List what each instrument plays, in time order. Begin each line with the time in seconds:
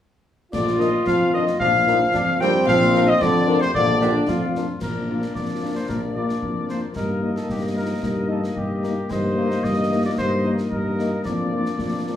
0.53 tuba A#1, euphonium D3, trombone section F4, cornet D5, woodwind section D5, concert bass drum, snare, crash
0.67 snare
0.79 euphonium D#3, french horn section D4 F4 A#4, cornet D#5, woodwind section D#5, snare
1.07 tuba F2, euphonium F3, cornet F5, woodwind section F5, concert bass drum, snare
1.33 euphonium D#3, french horn section D4 F4 A#4, cornet D#5, woodwind section D#5
1.47 snare
1.59 tuba A#1, euphonium F3, trombone section D4, cornet F5, woodwind section F5, concert bass drum
1.87 french horn section D4 F4 A#4, trombone section D#4, snare
2.14 tuba F2, trombone section D4, concert bass drum, snare
2.40 euphonium G3, trombone section C4, french horn section D4 F4 A#4, woodwind section G5, cornet G5, snare
2.66 tuba A#1, euphonium F3, woodwind section F5, cornet F5, concert bass drum, snare, crash
2.81 snare
2.94 french horn section D4 F4 A#4, snare
3.07 euphonium D#3, woodwind section D#5, cornet D#5
3.20 tuba F2, euphonium D3, woodwind section D5, cornet D5, concert bass drum, snare
3.48 french horn section D4 F4 A#4
3.62 euphonium C3, cornet C5, woodwind section C5, snare
3.74 tuba A#1, euphonium D3, trombone section A#3, cornet D5, woodwind section D5, concert bass drum
4.01 trombone section D4, french horn section D4 F4 A#4, cornet G4, snare
4.28 tuba F2, cornet F4, trombone section F4, concert bass drum, snare
4.55 french horn section D4 F4 A#4, snare
4.81 tuba A#1, trombone section A#3 D4, woodwind section A#4 D5, cornet A#4, concert bass drum, snare, crash
5.09 french horn section A#3 D4 F4
5.22 snare
5.35 tuba F2, cornet D5, concert bass drum, snare
5.63 french horn section A#3 D4 F4
5.76 cornet C5
5.89 tuba A#1, cornet A#4, concert bass drum, snare
6.15 french horn section A#3 D4 F4, cornet D5
6.29 snare
6.42 tuba F2, concert bass drum
6.69 french horn section A#3 D4 F4, cornet C5, snare
6.95 tuba G2, trombone section A#3 D#4, woodwind section A#4 D#5, cornet A#4, concert bass drum, snare
7.22 french horn section A#3 D#4
7.36 cornet A4, snare
7.49 tuba G2, cornet G4, concert bass drum, snare
7.75 french horn section A#3 D#4, cornet A#4
8.03 tuba G2, concert bass drum, snare
8.29 french horn section A#3 D#4, cornet A4
8.44 snare
8.56 tuba G2, cornet G4, concert bass drum
8.83 french horn section A#3 D#4, snare
9.10 tuba G2, trombone section A#3 D#4, woodwind section A#4 D#5, cornet C5, concert bass drum, snare, crash
9.37 french horn section A#3 D#4
9.51 snare
9.64 tuba G2, cornet D#5, concert bass drum, snare
9.90 french horn section A#3 D#4
10.05 cornet D5
10.18 tuba G2, cornet C5, concert bass drum, snare
10.44 french horn section A#3 D#4
10.58 snare
10.71 tuba G2, cornet A#4, concert bass drum
10.99 french horn section A#3 D#4, snare
11.25 tuba F2, trombone section A#3 D4, woodwind section A#4 D5, cornet D5, concert bass drum, snare
11.52 french horn section A#3 D4 F4
11.65 snare
11.79 tuba F2, euphonium F3, concert bass drum, snare
12.06 french horn section A#3 D4 F4